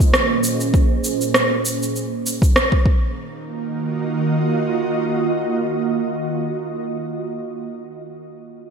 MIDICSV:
0, 0, Header, 1, 3, 480
1, 0, Start_track
1, 0, Tempo, 606061
1, 582, Time_signature, 4, 2, 24, 8
1, 6892, End_track
2, 0, Start_track
2, 0, Title_t, "Ambient pad"
2, 0, Program_c, 0, 92
2, 0, Note_on_c, 0, 46, 76
2, 0, Note_on_c, 0, 58, 84
2, 0, Note_on_c, 0, 72, 71
2, 581, Note_off_c, 0, 46, 0
2, 584, Note_off_c, 0, 58, 0
2, 586, Note_off_c, 0, 72, 0
2, 2257, Note_on_c, 0, 51, 71
2, 2342, Note_on_c, 0, 58, 69
2, 2648, Note_on_c, 0, 65, 65
2, 2709, Note_on_c, 0, 66, 70
2, 2783, Note_on_c, 0, 75, 67
2, 4812, Note_off_c, 0, 51, 0
2, 4896, Note_off_c, 0, 58, 0
2, 5018, Note_off_c, 0, 66, 0
2, 5018, Note_off_c, 0, 75, 0
2, 5020, Note_off_c, 0, 65, 0
2, 6892, End_track
3, 0, Start_track
3, 0, Title_t, "Drums"
3, 0, Note_on_c, 9, 36, 101
3, 5, Note_on_c, 9, 82, 42
3, 76, Note_off_c, 9, 36, 0
3, 84, Note_off_c, 9, 82, 0
3, 108, Note_on_c, 9, 37, 93
3, 111, Note_on_c, 9, 82, 31
3, 187, Note_off_c, 9, 37, 0
3, 190, Note_off_c, 9, 82, 0
3, 346, Note_on_c, 9, 82, 75
3, 425, Note_off_c, 9, 82, 0
3, 479, Note_on_c, 9, 82, 40
3, 558, Note_off_c, 9, 82, 0
3, 584, Note_on_c, 9, 36, 115
3, 587, Note_on_c, 9, 82, 30
3, 663, Note_off_c, 9, 36, 0
3, 666, Note_off_c, 9, 82, 0
3, 826, Note_on_c, 9, 82, 71
3, 905, Note_off_c, 9, 82, 0
3, 960, Note_on_c, 9, 82, 39
3, 1039, Note_off_c, 9, 82, 0
3, 1064, Note_on_c, 9, 37, 82
3, 1068, Note_on_c, 9, 82, 30
3, 1144, Note_off_c, 9, 37, 0
3, 1147, Note_off_c, 9, 82, 0
3, 1309, Note_on_c, 9, 82, 74
3, 1389, Note_off_c, 9, 82, 0
3, 1447, Note_on_c, 9, 82, 40
3, 1526, Note_off_c, 9, 82, 0
3, 1551, Note_on_c, 9, 82, 30
3, 1630, Note_off_c, 9, 82, 0
3, 1793, Note_on_c, 9, 82, 70
3, 1873, Note_off_c, 9, 82, 0
3, 1916, Note_on_c, 9, 36, 101
3, 1924, Note_on_c, 9, 82, 41
3, 1995, Note_off_c, 9, 36, 0
3, 2004, Note_off_c, 9, 82, 0
3, 2027, Note_on_c, 9, 37, 92
3, 2031, Note_on_c, 9, 82, 31
3, 2106, Note_off_c, 9, 37, 0
3, 2110, Note_off_c, 9, 82, 0
3, 2155, Note_on_c, 9, 36, 98
3, 2234, Note_off_c, 9, 36, 0
3, 2262, Note_on_c, 9, 36, 101
3, 2341, Note_off_c, 9, 36, 0
3, 6892, End_track
0, 0, End_of_file